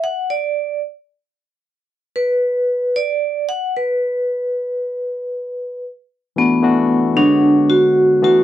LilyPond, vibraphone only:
\new Staff \with { instrumentName = "Vibraphone" } { \time 4/4 \key b \dorian \tempo 4 = 114 fis''8 d''4 r2 r8 | b'4. d''4 fis''8 b'4~ | b'2. r4 | b4. d'4 fis'4 fis'8 | }